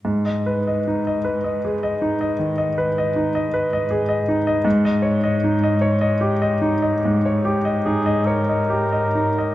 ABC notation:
X:1
M:12/8
L:1/16
Q:3/8=51
K:G#m
V:1 name="Grand piano"
G,, d B d D d B d G d D d D, d B d D d B d G d D d | G,, d c d D d c d =G d D d ^G,, c =G d D d c d G d D d |]
V:2 name="Cor anglais"
z24 | z16 G2 A6 |]
V:3 name="Cello section" clef=bass
G,,24 | G,,16- G,,6- G,, z |]